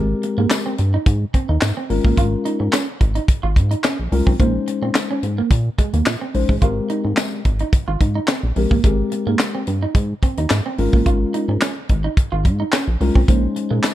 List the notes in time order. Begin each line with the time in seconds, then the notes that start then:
Already playing: G#1 G#3 C4 G4 A#4
0.23 muted clean electric guitar stroke, closed hi-hat
0.38 G#2 A#3
0.50 snare, clap, closed hi-hat, tambourine
0.66 C4
0.78 G2, muted clean electric guitar stroke, closed hi-hat
0.94 D#4
1.06 G#2, muted clean electric guitar stroke, kick, closed hi-hat
1.34 C4, kick, closed hi-hat
1.49 D#2 D#4
1.61 G#2, snare, clap, closed hi-hat, tambourine
1.77 C4
1.90 G#1 G#3 C#4 F4 A#4, muted clean electric guitar stroke, open hi-hat
2.04 A1 A#3, kick
2.17 G#1 F4, kick, closed hi-hat
2.45 D#4, closed hi-hat
2.60 G#2, muted clean electric guitar stroke
2.72 C#4, snare, clap, closed hi-hat, tambourine
3.01 G#1, muted clean electric guitar stroke, kick, closed hi-hat
3.15 D#4, closed hi-hat
3.28 kick, closed hi-hat
3.43 G#1 F4
3.56 G#2, muted clean electric guitar stroke, kick, closed hi-hat
3.71 D#4, closed hi-hat
3.84 C#4, snare, clap, closed hi-hat, tambourine
3.99 A#1
4.12 C2 G#3 C#4 F4 A#4, muted clean electric guitar stroke, open hi-hat
4.27 B1 C4, kick
4.39 A#1 G#3 A#3 C4 D#4 C5, kick, closed hi-hat
4.46 C#4
4.68 muted clean electric guitar stroke, closed hi-hat
4.82 A#2 C4
4.94 snare, clap, closed hi-hat, tambourine
5.11 C#4
5.23 G#2, muted clean electric guitar stroke, closed hi-hat
5.38 A#3
5.51 A#2, muted clean electric guitar stroke, kick, closed hi-hat
5.79 G#3, kick, closed hi-hat
5.93 D#2 A#3, closed hi-hat
6.06 A#2, snare, clap, closed hi-hat, tambourine
6.21 C4
6.34 A#1 G#3 C#4 D#4 C5, muted clean electric guitar stroke, open hi-hat
6.49 A1 G#3, kick
6.62 G#1 G#3 C4 F4 G4 A#4, kick, closed hi-hat
6.90 D#4, closed hi-hat
7.05 G#2, muted clean electric guitar stroke
7.17 C4, snare, clap, closed hi-hat, tambourine
7.45 G#1, muted clean electric guitar stroke, kick, closed hi-hat
7.59 D#4, closed hi-hat
7.73 kick, closed hi-hat
7.88 G#1 F4
8.01 G#2, muted clean electric guitar stroke, kick, closed hi-hat
8.15 D#4
8.27 C4, snare, clap, closed hi-hat, tambourine
8.43 A#1
8.56 A#1 G#3 C4 G4 A#4, muted clean electric guitar stroke, open hi-hat
8.71 A1 A#3, kick
8.84 G#1 G#3 C4 G4 A#4, kick, closed hi-hat
9.12 muted clean electric guitar stroke, closed hi-hat
9.27 G#2 A#3
9.39 snare, clap, closed hi-hat, tambourine
9.55 C4
9.67 G2, muted clean electric guitar stroke, closed hi-hat
9.83 D#4
9.95 G#2, muted clean electric guitar stroke, kick, closed hi-hat
10.23 C4, kick, closed hi-hat
10.37 D#2 D#4, closed hi-hat
10.50 G#2, snare, clap, closed hi-hat, tambourine
10.66 C4
10.78 G#1 G#3 C#4 F4 A#4, muted clean electric guitar stroke, open hi-hat
10.93 A1 A#3, kick
11.06 G#1 F4, kick, closed hi-hat
11.34 D#4, closed hi-hat
11.48 G#2, muted clean electric guitar stroke
11.61 C#4, snare, clap, closed hi-hat, tambourine
11.89 G#1, muted clean electric guitar stroke, kick, closed hi-hat
12.04 D#4
12.17 kick, closed hi-hat
12.32 G#1 F4
12.45 G#2, muted clean electric guitar stroke, kick, closed hi-hat
12.60 D#4
12.72 C#4, snare, clap, closed hi-hat, tambourine
12.88 A#1
13.01 C2 G#3 C#4 F4 A#4, muted clean electric guitar stroke, open hi-hat
13.15 B1 C4, kick
13.28 A#1 G#3 A#3 C#4 D#4 C5, kick, closed hi-hat
13.56 muted clean electric guitar stroke, closed hi-hat
13.71 A#2 G#3
13.83 snare, clap, closed hi-hat, tambourine